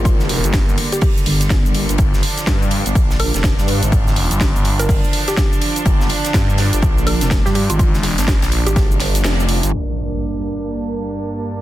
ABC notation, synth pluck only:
X:1
M:4/4
L:1/16
Q:"Swing 16ths" 1/4=124
K:Gphr
V:1 name="Synth pluck"
F z6 G G z6 z | z8 z2 B z4 z | z6 z B z3 G G z3 | z8 z2 B z2 G G F |
F z6 G G z6 z | z16 |]